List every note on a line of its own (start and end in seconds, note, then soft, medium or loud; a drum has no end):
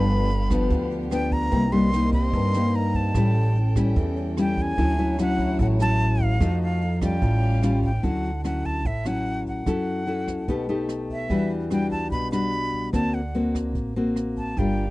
0.00 0.66 G1 loud
0.00 0.69 G2 medium
0.00 0.30 F3 medium
0.00 0.30 B3 medium
0.00 1.50 B3 medium
0.00 0.30 D4 medium
0.00 1.50 G4 medium
0.00 1.48 F5 medium
0.00 0.91 B5 medium
0.10 closed hi-hat soft
0.30 closed hi-hat soft
0.50 1.08 F3 medium
0.50 1.08 B3 medium
0.50 1.08 D4 medium
0.50 kick medium
0.50 cross-stick medium
0.50 closed hi-hat soft
0.70 1.48 D2 loud
0.70 1.50 D3 medium
0.70 kick medium
0.70 closed hi-hat soft
0.91 closed hi-hat soft
1.11 1.50 F3 medium
1.11 1.51 B3 medium
1.11 1.51 D4 medium
1.11 1.34 G5 loud
1.11 cross-stick medium
1.11 closed hi-hat soft
1.31 1.74 A#5 medium
1.31 kick soft
1.31 closed hi-hat soft
1.51 2.29 C2 loud
1.51 2.31 C3 medium
1.51 1.64 G3 medium
1.51 1.64 A#3 medium
1.51 3.13 C4 medium
1.51 1.64 D#4 medium
1.51 3.13 A#4 medium
1.51 3.13 D#5 medium
1.51 kick medium
1.51 closed hi-hat soft
1.72 1.89 G3 medium
1.72 1.89 A#3 medium
1.72 1.89 D#4 medium
1.72 2.13 C6 medium
1.72 closed hi-hat soft
1.93 2.51 G3 medium
1.93 2.51 A#3 medium
1.93 2.51 D#4 medium
1.93 cross-stick medium
1.93 closed hi-hat soft
2.13 2.77 C6 medium
2.13 kick medium
2.13 closed hi-hat soft
2.33 3.11 G2 loud
2.33 3.13 G2 medium
2.33 kick medium
2.33 closed hi-hat soft
2.54 3.12 G3 medium
2.54 3.13 A#3 medium
2.54 3.13 D#4 medium
2.54 cross-stick medium
2.54 closed hi-hat soft
2.74 2.97 A#5 medium
2.74 closed hi-hat soft
2.94 3.76 A5 medium
2.94 kick medium
2.94 closed hi-hat soft
3.14 3.92 A1 loud
3.14 3.94 A2 medium
3.14 3.56 G3 medium
3.14 4.76 C#4 medium
3.14 3.56 C#4 medium
3.14 3.56 E4 medium
3.14 4.76 A4 medium
3.14 4.76 G5 medium
3.14 kick medium
3.14 cross-stick medium
3.14 closed hi-hat soft
3.35 closed hi-hat soft
3.56 closed hi-hat soft
3.76 4.34 G3 medium
3.76 4.34 C#4 medium
3.76 4.34 E4 medium
3.76 kick medium
3.76 cross-stick medium
3.76 closed hi-hat soft
3.96 4.73 E2 loud
3.96 4.76 E3 medium
3.96 kick medium
3.96 closed hi-hat soft
4.16 closed hi-hat soft
4.37 4.76 G3 medium
4.37 4.77 C#4 medium
4.37 4.77 E4 medium
4.37 4.63 G5 medium
4.37 cross-stick medium
4.37 closed hi-hat medium
4.57 kick medium
4.57 closed hi-hat soft
4.62 5.20 G#5 loud
4.78 5.55 D2 loud
4.78 5.57 D3 medium
4.78 4.95 F#3 medium
4.78 4.95 C#4 medium
4.78 6.39 E4 medium
4.78 4.95 E4 medium
4.78 6.39 C#5 medium
4.78 kick medium
4.78 closed hi-hat soft
4.98 5.15 F#3 medium
4.98 5.15 C#4 medium
4.98 5.15 E4 medium
4.98 closed hi-hat soft
5.18 5.77 F#3 medium
5.18 5.77 C#4 medium
5.18 5.77 E4 medium
5.18 5.58 F#5 loud
5.18 cross-stick medium
5.18 closed hi-hat soft
5.39 kick medium
5.39 closed hi-hat soft
5.59 6.36 A1 loud
5.59 6.39 A2 medium
5.59 5.67 F#5 medium
5.59 kick medium
5.59 closed hi-hat soft
5.79 6.38 F#3 medium
5.79 6.38 C#4 medium
5.79 6.38 E4 medium
5.79 6.24 A5 loud
5.79 cross-stick medium
5.79 closed hi-hat soft
6.00 closed hi-hat soft
6.20 6.62 F5 medium
6.20 kick medium
6.20 closed hi-hat soft
6.39 7.18 F2 loud
6.39 7.20 F3 medium
6.39 6.81 A3 medium
6.39 7.20 D#4 medium
6.39 6.81 D#4 medium
6.39 6.81 F#4 medium
6.39 7.20 A4 medium
6.39 kick medium
6.39 cross-stick medium
6.39 closed hi-hat soft
6.61 7.00 F5 medium
6.61 closed hi-hat soft
6.81 closed hi-hat soft
7.01 7.59 G3 medium
7.01 7.59 C#4 medium
7.01 7.60 F4 medium
7.01 7.80 G5 medium
7.01 kick medium
7.01 cross-stick medium
7.01 closed hi-hat soft
7.22 7.99 A1 medium
7.22 8.01 A2 medium
7.22 8.02 C#4 medium
7.22 8.02 G4 medium
7.22 8.03 F5 medium
7.22 kick medium
7.22 closed hi-hat soft
7.42 closed hi-hat soft
7.63 7.90 G3 medium
7.63 7.90 C#4 medium
7.63 7.90 F4 medium
7.63 cross-stick medium
7.63 closed hi-hat soft
7.83 8.06 G5 medium
7.83 kick soft
7.83 closed hi-hat soft
8.03 8.85 D2 medium
8.03 8.83 D3 medium
8.03 8.29 F#3 medium
8.03 8.30 C#4 medium
8.03 8.30 E4 medium
8.03 8.44 F#5 medium
8.03 kick medium
8.03 closed hi-hat soft
8.24 closed hi-hat soft
8.44 8.84 F#3 soft
8.44 8.85 C#4 medium
8.44 8.85 E4 medium
8.44 8.67 F#5 medium
8.44 cross-stick medium
8.44 closed hi-hat soft
8.64 8.88 A5 medium
8.64 kick soft
8.64 closed hi-hat soft
8.85 9.63 A1 medium
8.85 9.64 A2 medium
8.85 9.08 E5 medium
8.85 kick medium
8.85 closed hi-hat soft
9.05 9.64 F#3 medium
9.05 9.64 C#4 medium
9.05 9.64 E4 medium
9.05 9.47 F#5 loud
9.05 cross-stick medium
9.05 closed hi-hat soft
9.26 closed hi-hat soft
9.46 10.66 F#5 medium
9.46 kick soft
9.46 closed hi-hat soft
9.66 10.48 F#2 medium
9.66 10.46 F#3 medium
9.66 10.04 C#4 medium
9.66 10.04 E4 medium
9.66 10.04 A4 medium
9.66 kick medium
9.66 cross-stick medium
9.66 closed hi-hat soft
9.87 closed hi-hat soft
10.07 10.46 C#4 medium
10.07 10.47 E4 medium
10.07 10.47 A4 medium
10.07 closed hi-hat soft
10.28 kick soft
10.28 cross-stick medium
10.28 closed hi-hat soft
10.48 11.26 B1 medium
10.48 11.28 B2 medium
10.48 10.65 A3 medium
10.48 10.66 D#4 soft
10.48 10.66 G4 medium
10.48 kick medium
10.48 closed hi-hat soft
10.69 11.27 A3 medium
10.69 11.27 D#4 medium
10.69 11.27 G4 medium
10.69 closed hi-hat soft
10.89 cross-stick medium
10.89 closed hi-hat soft
11.09 11.49 E5 medium
11.09 kick soft
11.09 closed hi-hat soft
11.30 12.12 E2 medium
11.30 12.10 E3 medium
11.30 11.68 G3 medium
11.30 11.68 D4 medium
11.30 11.68 F#4 medium
11.30 kick medium
11.30 closed hi-hat soft
11.50 closed hi-hat soft
11.71 12.29 G3 medium
11.71 12.29 D4 medium
11.71 12.29 F#4 medium
11.71 11.91 G5 medium
11.71 cross-stick medium
11.71 closed hi-hat soft
11.91 12.10 A5 medium
11.91 kick soft
11.91 closed hi-hat soft
12.11 12.90 B1 loud
12.11 12.92 B2 medium
12.11 12.31 B5 medium
12.11 kick medium
12.11 closed hi-hat soft
12.32 12.90 G3 medium
12.32 12.90 D4 medium
12.32 12.91 F#4 medium
12.32 12.90 B5 loud
12.32 cross-stick medium
12.32 closed hi-hat soft
12.52 closed hi-hat soft
12.73 kick soft
12.73 closed hi-hat soft
12.93 13.75 D2 medium
12.93 13.73 D3 medium
12.93 13.20 A#3 medium
12.93 13.20 C4 medium
12.93 13.20 F#4 medium
12.93 13.16 A5 medium
12.93 kick medium
12.93 cross-stick medium
12.93 closed hi-hat soft
13.14 13.55 F#5 medium
13.14 closed hi-hat soft
13.34 13.93 A#3 medium
13.34 13.93 C4 medium
13.34 13.93 F#4 medium
13.34 closed hi-hat soft
13.55 kick soft
13.55 cross-stick medium
13.55 closed hi-hat soft
13.75 14.53 A1 medium
13.75 kick medium
13.75 closed hi-hat soft
13.96 14.54 A#3 medium
13.96 14.55 C4 medium
13.96 14.55 F#4 medium
13.96 closed hi-hat soft
14.16 cross-stick medium
14.16 closed hi-hat soft
14.37 14.60 A5 medium
14.37 kick soft
14.37 closed hi-hat soft
14.57 14.90 G1 medium
14.57 14.90 G3 medium
14.57 14.84 D4 medium
14.57 14.85 F4 medium
14.57 14.90 G4 medium
14.57 14.85 A#4 medium
14.57 14.90 F5 medium
14.57 14.90 G5 medium
14.57 kick medium
14.57 closed hi-hat soft
14.77 closed hi-hat soft